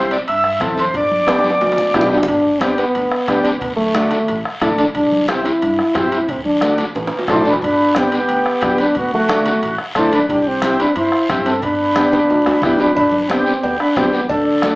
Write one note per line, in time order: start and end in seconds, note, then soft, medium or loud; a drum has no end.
0.00 0.14 C2 medium
0.00 0.17 C4 medium
0.00 0.17 E4 medium
0.00 0.17 G4 medium
0.11 0.19 D5 medium
0.11 high timbale medium
0.11 short guiro medium
0.28 0.55 G2 medium
0.28 0.59 E5 medium
0.28 high timbale medium
0.28 long guiro medium
0.44 bombo rim medium
0.44 high conga soft
0.60 0.88 E2 medium
0.60 0.85 C4 medium
0.60 0.85 E4 medium
0.60 0.85 A4 medium
0.60 bombo low medium
0.60 bombo rim medium
0.60 high conga medium
0.60 high timbale medium
0.60 short guiro medium
0.77 0.94 C5 medium
0.77 high conga medium
0.77 high timbale medium
0.77 short guiro medium
0.94 1.48 G1 medium
0.94 2.09 D5 medium
0.94 bombo low medium
0.94 high conga soft
0.94 high timbale medium
0.94 long guiro medium
1.11 high conga medium
1.27 1.51 B3 medium
1.27 1.51 D4 medium
1.27 1.51 G4 medium
1.27 bombo rim medium
1.27 high conga medium
1.27 high timbale medium
1.27 short guiro medium
1.39 high timbale medium
1.44 high conga medium
1.44 short guiro medium
1.50 high timbale medium
1.61 1.88 D2 medium
1.61 low timbale medium
1.61 long guiro medium
1.67 high conga medium
1.72 low timbale medium
1.78 low conga medium
1.94 2.21 B1 medium
1.94 2.18 B3 medium
1.94 2.18 D4 medium
1.94 2.03 E4 medium
1.94 2.19 G4 medium
1.94 bombo low medium
1.94 bombo rim medium
1.94 low timbale medium
1.94 short guiro medium
2.01 low conga medium
2.06 low timbale medium
2.11 2.27 D4 medium
2.11 short guiro medium
2.17 low timbale loud
2.23 low conga medium
2.28 2.81 G1 medium
2.28 2.62 D4 medium
2.28 bombo low medium
2.28 high conga soft
2.28 high timbale medium
2.28 long guiro medium
2.61 2.85 B3 medium
2.61 2.78 C4 medium
2.61 2.85 D4 medium
2.61 2.85 G4 medium
2.61 bombo rim medium
2.61 high conga medium
2.61 high timbale medium
2.61 short guiro medium
2.78 3.41 B3 medium
2.78 high timbale medium
2.78 short guiro medium
2.95 3.08 D2 medium
2.95 high timbale medium
2.95 long guiro medium
3.11 bombo rim medium
3.11 high conga soft
3.28 3.55 D2 medium
3.28 3.52 B3 medium
3.28 3.52 D4 medium
3.28 3.52 G4 loud
3.28 bombo low medium
3.28 bombo rim medium
3.28 high conga medium
3.28 high timbale medium
3.28 short guiro medium
3.44 3.52 D4 medium
3.44 high timbale medium
3.44 short guiro medium
3.59 4.15 D2 medium
3.59 3.76 B3 medium
3.59 bombo low medium
3.59 high conga soft
3.59 high timbale medium
3.59 long guiro medium
3.77 4.40 A3 loud
3.77 high conga medium
3.94 4.19 A3 medium
3.94 4.19 D4 medium
3.94 4.19 F#4 medium
3.94 bombo rim medium
3.94 high conga medium
3.94 high timbale medium
3.94 short guiro medium
4.11 low conga medium
4.11 high timbale medium
4.11 short guiro medium
4.28 4.42 A1 medium
4.28 high timbale medium
4.28 long guiro medium
4.45 bombo rim medium
4.45 high conga soft
4.62 4.88 A1 medium
4.62 4.85 A3 medium
4.62 4.85 D4 medium
4.62 4.69 E4 medium
4.62 4.85 A4 medium
4.62 bombo low medium
4.62 bombo rim medium
4.62 high conga medium
4.62 low conga medium
4.62 high timbale medium
4.62 short guiro medium
4.78 4.87 D4 medium
4.78 high timbale medium
4.78 short guiro medium
4.95 5.49 C2 medium
4.95 5.26 D4 medium
4.95 bombo low medium
4.95 high conga soft
4.95 high timbale medium
4.95 long guiro medium
5.12 high conga medium
5.28 5.52 C4 medium
5.28 5.48 C4 medium
5.28 5.52 E4 medium
5.28 5.52 G4 medium
5.28 bombo rim medium
5.28 high conga medium
5.28 high timbale medium
5.28 short guiro medium
5.45 6.12 E4 loud
5.45 high timbale medium
5.45 short guiro medium
5.62 5.75 G2 medium
5.62 high timbale medium
5.62 long guiro medium
5.79 bombo rim medium
5.79 high conga soft
5.94 6.22 G2 medium
5.94 6.18 C4 medium
5.94 6.19 E4 medium
5.94 6.19 G4 loud
5.94 bombo low medium
5.94 bombo rim medium
5.94 high conga medium
5.94 high timbale medium
5.94 low timbale medium
5.94 short guiro medium
6.12 6.33 E4 medium
6.12 high timbale medium
6.12 short guiro medium
6.28 6.82 D2 medium
6.28 6.45 C4 medium
6.28 bombo low medium
6.28 high conga soft
6.28 high timbale medium
6.28 long guiro medium
6.45 6.82 D4 medium
6.45 high conga medium
6.61 6.85 A3 medium
6.61 6.85 D4 medium
6.61 6.86 F#4 medium
6.61 bombo rim medium
6.61 high conga medium
6.61 high timbale medium
6.61 short guiro medium
6.78 low conga medium
6.78 high timbale medium
6.78 short guiro medium
6.95 7.09 A1 medium
6.95 high timbale medium
6.95 long guiro medium
7.07 high timbale medium
7.12 high conga soft
7.19 low timbale medium
7.28 7.43 B1 medium
7.28 7.52 A3 medium
7.28 7.52 D4 medium
7.28 7.46 E4 loud
7.28 7.53 A4 medium
7.28 7.46 C5 medium
7.28 bombo low medium
7.28 bombo rim medium
7.28 high conga medium
7.28 low conga medium
7.28 low timbale loud
7.28 short guiro medium
7.41 7.60 A1 medium
7.41 high conga medium
7.41 low timbale medium
7.46 7.54 D4 loud
7.46 7.56 B4 medium
7.46 short guiro medium
7.53 low timbale medium
7.62 8.15 G1 medium
7.62 8.00 D4 medium
7.62 7.95 B4 medium
7.62 bombo low medium
7.62 high conga soft
7.62 high timbale medium
7.62 long guiro medium
7.95 8.19 B3 medium
7.95 8.14 C4 medium
7.95 8.19 D4 medium
7.95 8.19 G4 medium
7.95 bombo rim medium
7.95 high conga medium
7.95 high timbale medium
7.95 short guiro medium
7.99 8.13 G4 medium
8.12 8.84 B3 medium
8.12 8.76 G4 medium
8.12 high timbale medium
8.12 short guiro medium
8.29 8.42 D2 medium
8.29 high timbale medium
8.29 long guiro medium
8.46 bombo rim medium
8.46 high conga soft
8.62 8.89 D2 medium
8.62 8.86 B3 medium
8.62 8.86 D4 medium
8.62 8.86 G4 medium
8.62 bombo low medium
8.62 bombo rim medium
8.62 high conga medium
8.62 high timbale medium
8.62 low timbale medium
8.62 short guiro medium
8.78 8.97 D4 loud
8.78 8.96 B4 medium
8.78 high conga medium
8.78 high timbale medium
8.78 short guiro medium
8.95 9.49 D2 medium
8.95 9.12 F#4 medium
8.95 bombo low medium
8.95 high conga soft
8.95 high timbale medium
8.95 long guiro medium
9.00 9.14 B3 medium
9.13 9.76 A3 medium
9.13 9.76 F#4 medium
9.13 high conga medium
9.29 9.52 A3 medium
9.29 9.52 D4 medium
9.29 9.53 F#4 medium
9.29 bombo rim medium
9.29 high conga medium
9.29 high timbale medium
9.29 short guiro medium
9.46 low conga medium
9.46 high timbale medium
9.46 short guiro medium
9.62 9.76 A1 medium
9.62 high timbale medium
9.62 long guiro medium
9.78 bombo rim medium
9.78 high conga soft
9.95 10.23 D2 medium
9.95 10.19 A3 medium
9.95 10.19 D4 medium
9.95 10.12 E4 medium
9.95 10.20 A4 medium
9.95 10.12 C5 medium
9.95 bombo low medium
9.95 bombo rim medium
9.95 high conga medium
9.95 low conga medium
9.95 high timbale medium
9.95 short guiro medium
10.12 10.29 D4 medium
10.12 10.29 B4 medium
10.12 high conga medium
10.12 high timbale medium
10.12 short guiro medium
10.29 10.83 C2 medium
10.29 10.49 D4 medium
10.29 10.46 G4 medium
10.29 bombo low medium
10.29 high conga soft
10.29 high timbale medium
10.29 long guiro medium
10.47 10.80 C4 medium
10.47 10.80 G4 medium
10.62 10.86 C4 medium
10.62 10.86 E4 medium
10.62 10.87 G4 medium
10.62 bombo rim medium
10.62 high conga medium
10.62 high timbale medium
10.62 short guiro medium
10.80 10.96 D4 medium
10.80 10.95 B4 medium
10.80 high timbale medium
10.80 short guiro medium
10.96 11.09 G2 medium
10.96 11.28 E4 medium
10.96 11.28 C5 medium
10.96 high timbale medium
10.96 long guiro medium
11.12 bombo rim medium
11.12 high conga soft
11.29 11.56 G2 medium
11.29 11.53 C4 medium
11.29 11.53 E4 medium
11.29 11.54 G4 medium
11.29 bombo low medium
11.29 bombo rim medium
11.29 high conga medium
11.29 high timbale medium
11.29 short guiro medium
11.46 11.62 C4 medium
11.46 11.62 A4 medium
11.46 high timbale medium
11.46 short guiro medium
11.62 12.16 G1 medium
11.62 12.59 D4 medium
11.62 12.62 B4 medium
11.62 bombo low medium
11.62 high timbale medium
11.62 long guiro medium
11.96 12.20 B3 medium
11.96 12.19 D4 medium
11.96 12.20 G4 medium
11.96 bombo rim medium
11.96 high conga medium
11.96 high timbale medium
11.96 short guiro medium
12.12 low conga medium
12.12 high timbale medium
12.12 short guiro medium
12.30 12.44 D2 medium
12.30 low timbale medium
12.30 long guiro medium
12.46 bombo rim medium
12.46 high conga soft
12.46 low timbale medium
12.62 12.90 D2 medium
12.62 12.87 B3 medium
12.62 12.87 D4 medium
12.62 12.82 E4 loud
12.62 12.87 G4 medium
12.62 12.78 B4 medium
12.62 bombo low medium
12.62 bombo rim medium
12.62 high conga medium
12.62 low conga medium
12.62 short guiro medium
12.79 12.95 D4 medium
12.79 12.93 B4 medium
12.79 high conga medium
12.79 low timbale medium
12.79 short guiro medium
12.95 13.50 G1 medium
12.95 13.22 D4 medium
12.95 13.19 B4 medium
12.95 bombo low medium
12.95 cowbell loud
12.95 high conga soft
12.95 long guiro medium
13.12 high conga medium
13.21 13.31 D4 medium
13.21 13.29 B4 medium
13.28 13.54 B3 medium
13.28 13.66 C4 medium
13.28 13.54 D4 medium
13.28 13.60 G4 medium
13.28 13.54 G4 medium
13.28 bombo rim medium
13.28 cowbell medium
13.28 high conga medium
13.28 short guiro medium
13.46 short guiro medium
13.61 13.77 D2 medium
13.61 13.79 B3 medium
13.61 13.79 G4 medium
13.61 cowbell medium
13.61 long guiro medium
13.80 13.98 D4 medium
13.80 13.96 B4 medium
13.80 bombo rim medium
13.80 high conga soft
13.96 14.23 D2 medium
13.96 14.20 B3 medium
13.96 14.16 C4 medium
13.96 14.21 D4 medium
13.96 14.11 G4 medium
13.96 14.21 G4 medium
13.96 bombo low medium
13.96 bombo rim medium
13.96 cowbell medium
13.96 high conga medium
13.96 low timbale medium
13.96 short guiro medium
14.13 14.30 B3 medium
14.13 14.30 G4 medium
14.13 short guiro medium
14.29 14.75 D2 medium
14.29 14.75 D4 medium
14.29 14.75 A4 medium
14.29 bombo low medium
14.29 cowbell loud
14.29 high conga soft
14.29 long guiro medium
14.62 14.75 A3 medium
14.62 14.75 D4 medium
14.62 14.75 F#4 medium
14.62 bombo rim medium
14.62 cowbell medium
14.62 high conga medium
14.62 short guiro medium